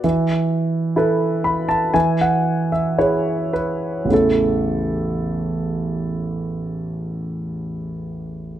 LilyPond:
\new Staff \with { instrumentName = "Grand piano" } { \time 4/4 \key a \major \tempo 4 = 54 << { r4. b''16 a''16 gis''16 fis''8 e''16 cis''8 b'8 | r1 | } \\ { e4 <e' a' b'>4 e4 <e' gis' b'>4 | <a,, e, cis a e' a'>1 | } >> }